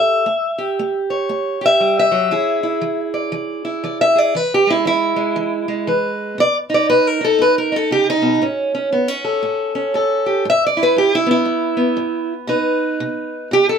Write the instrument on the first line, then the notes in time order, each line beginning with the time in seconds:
steel-string acoustic guitar
Already playing: A3 G4 A4 E5
0.26 A3
0.58 G4
0.79 A3
1.10 C#5
1.29 A3
1.61 G4
1.66 E5
1.80 G3
1.99 E5
2.11 F#3
2.31 E3 E4 G#4
2.63 E4
2.81 E3
3.14 D5
3.32 E3
3.65 E4
3.84 E3 D5
4.01 E5
4.15 G#4 D5
4.35 E3 B4
4.54 G4
4.67 G#3 E4
4.85 E3 E4
5.16 G#3
5.36 E3
5.68 G#3
5.87 E3 B4
6.38 B2 D5
6.70 D#4
6.74 D5
6.90 B2 B4
7.07 A#4
7.21 D#4 A4
7.39 B2 B4
7.58 A#4
7.72 D#4
7.76 A4
7.91 C#3 G4
8.10 D#4
8.22 B2
8.42 A2 C#4
8.75 C#4
8.92 A2 B3
9.08 C#4
9.25 A4
9.43 A2
9.75 C#4
9.94 A2 A4
10.26 G4
10.45 G#2
10.50 E5
10.66 D5
10.77 E4
10.83 B4
10.96 G#2 G4
11.15 E4
11.26 B3
11.31 E4
11.45 G#2
11.77 B3
11.97 G#2
12.47 B2 D#4 B4
13.00 B2
13.51 B2 G4
13.69 A4